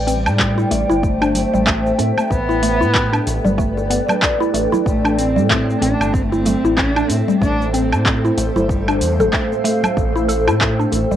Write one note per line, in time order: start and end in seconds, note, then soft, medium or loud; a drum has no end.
0.00 0.28 A1 loud
0.00 11.16 A3 medium
0.00 0.79 D5 medium
0.00 11.16 G5 medium
0.07 1.00 G3 medium
0.07 0.18 C4 medium
0.07 open hi-hat medium
0.07 cabasa medium
0.17 2.31 C5 medium
0.26 0.65 A2 medium
0.26 11.16 A4 medium
0.26 cabasa soft
0.26 low woodblock medium
0.39 kick loud
0.39 clap loud
0.39 cabasa soft
0.58 0.65 E4 medium
0.58 cabasa soft
0.71 0.84 A1 loud
0.71 0.88 A3 medium
0.71 open hi-hat medium
0.71 high bongo medium
0.71 cabasa medium
0.83 3.34 E5 medium
0.89 1.44 G1 medium
0.89 1.02 E4 medium
0.89 cabasa soft
1.03 2.27 A3 loud
1.03 kick loud
1.03 cabasa soft
1.21 1.34 D4 medium
1.21 high conga medium
1.21 cabasa soft
1.21 low woodblock medium
1.35 open hi-hat loud
1.35 low conga medium
1.35 cabasa medium
1.53 1.92 A1 medium
1.53 1.61 G3 medium
1.53 cabasa soft
1.66 1.84 A3 loud
1.66 kick loud
1.66 clap loud
1.66 cabasa soft
1.86 cabasa soft
1.98 2.12 A2 medium
1.98 2.09 C4 medium
1.98 open hi-hat medium
1.98 high bongo medium
1.98 cabasa medium
2.17 high conga medium
2.17 cabasa soft
2.17 low woodblock medium
2.31 2.83 A1 loud
2.31 3.54 B3 loud
2.31 kick loud
2.31 cabasa soft
2.49 2.57 E4 medium
2.49 cabasa soft
2.63 2.79 A3 medium
2.63 open hi-hat medium
2.63 cabasa medium
2.75 4.87 B4 medium
2.80 3.20 A2 medium
2.80 2.94 E4 medium
2.80 5.90 D5 medium
2.80 cabasa soft
2.94 kick loud
2.94 clap loud
2.94 cabasa soft
3.13 3.26 D4 medium
3.13 cabasa soft
3.13 low woodblock medium
3.27 3.39 A1 loud
3.27 open hi-hat medium
3.27 high bongo medium
3.27 cabasa medium
3.44 3.99 G1 medium
3.44 3.52 G3 medium
3.44 low conga loud
3.44 cabasa soft
3.58 3.76 A3 loud
3.58 kick loud
3.58 cabasa soft
3.77 high bongo medium
3.77 cabasa soft
3.90 4.01 B3 medium
3.90 open hi-hat medium
3.90 cabasa medium
4.08 high conga medium
4.08 low conga loud
4.08 cabasa soft
4.08 low woodblock medium
4.22 kick loud
4.22 clap loud
4.22 cabasa soft
4.40 4.48 E4 medium
4.40 high conga medium
4.40 cabasa soft
4.54 4.67 A1 loud
4.54 4.71 A3 medium
4.54 open hi-hat medium
4.54 high bongo soft
4.54 cabasa medium
4.72 4.85 E4 medium
4.72 high conga medium
4.72 low conga medium
4.72 cabasa soft
4.86 5.38 A1 loud
4.86 5.19 A3 loud
4.86 kick loud
4.86 cabasa soft
5.04 5.17 D4 medium
5.04 cabasa soft
5.04 low woodblock medium
5.18 5.49 C4 loud
5.18 open hi-hat medium
5.18 cabasa medium
5.36 5.75 A2 medium
5.36 5.44 G3 medium
5.36 cabasa soft
5.50 5.68 A3 loud
5.50 5.80 C4 loud
5.50 kick loud
5.50 clap loud
5.50 cabasa soft
5.70 cabasa soft
5.81 5.94 A1 loud
5.81 5.92 C4 medium
5.81 6.15 D4 loud
5.81 open hi-hat medium
5.81 high bongo medium
5.81 cabasa medium
6.01 6.55 G1 medium
6.01 11.16 C5 loud
6.01 7.42 E5 medium
6.01 cabasa soft
6.01 low woodblock medium
6.13 6.24 C4 loud
6.13 kick loud
6.13 cabasa soft
6.22 6.31 A3 medium
6.30 6.78 C4 loud
6.30 6.40 E4 medium
6.30 high conga medium
6.30 cabasa soft
6.45 6.63 A3 medium
6.45 open hi-hat medium
6.45 low conga loud
6.45 cabasa medium
6.64 7.03 A1 loud
6.64 6.77 E4 medium
6.64 cabasa soft
6.76 7.10 D4 loud
6.76 kick loud
6.76 clap loud
6.76 cabasa soft
6.96 7.09 D4 medium
6.96 cabasa soft
6.96 low woodblock medium
7.09 7.22 A2 medium
7.09 7.40 C4 loud
7.09 open hi-hat medium
7.09 high bongo medium
7.09 cabasa medium
7.28 7.36 G3 medium
7.28 high conga medium
7.28 cabasa soft
7.41 7.94 A1 loud
7.41 7.59 A3 loud
7.41 7.71 D4 loud
7.41 kick loud
7.41 cabasa soft
7.61 cabasa soft
7.73 8.39 C4 loud
7.73 7.84 C4 medium
7.73 open hi-hat medium
7.73 cabasa medium
7.92 8.30 A2 medium
7.92 cabasa soft
7.92 low woodblock medium
8.05 kick loud
8.05 clap medium
8.05 cabasa soft
8.25 8.32 E4 medium
8.25 cabasa soft
8.37 8.50 A1 loud
8.37 8.71 A3 medium
8.37 8.54 A3 medium
8.37 open hi-hat medium
8.37 high bongo medium
8.37 cabasa medium
8.56 9.01 G1 medium
8.56 8.69 E4 medium
8.56 9.96 F5 medium
8.56 low conga loud
8.56 cabasa soft
8.69 9.33 G3 medium
8.69 kick loud
8.69 cabasa soft
8.88 9.01 D4 medium
8.88 high bongo medium
8.88 cabasa soft
8.88 low woodblock medium
9.01 9.21 E2 medium
9.01 open hi-hat medium
9.01 cabasa medium
9.20 9.29 G1 medium
9.20 9.33 A4 medium
9.20 high conga medium
9.20 low conga loud
9.20 cabasa soft
9.33 9.51 A3 medium
9.33 kick loud
9.33 clap loud
9.33 cabasa soft
9.52 high conga medium
9.52 cabasa soft
9.64 9.82 A3 medium
9.64 open hi-hat medium
9.64 high bongo medium
9.64 cabasa medium
9.83 high conga medium
9.83 low conga medium
9.83 cabasa soft
9.83 low woodblock medium
9.97 10.49 A1 loud
9.97 kick loud
9.97 cabasa soft
10.16 10.23 E4 medium
10.16 cabasa soft
10.28 10.46 A4 loud
10.28 open hi-hat medium
10.28 cabasa medium
10.47 10.86 A2 loud
10.47 10.60 E4 medium
10.47 cabasa soft
10.47 low woodblock medium
10.61 kick loud
10.61 clap loud
10.61 cabasa soft
10.79 10.92 D4 medium
10.79 cabasa soft
10.92 11.05 A1 loud
10.92 11.16 E5 medium
10.92 open hi-hat medium
10.92 high bongo medium
10.92 cabasa medium
11.11 11.16 G1 medium
11.11 11.16 G3 medium
11.11 cabasa soft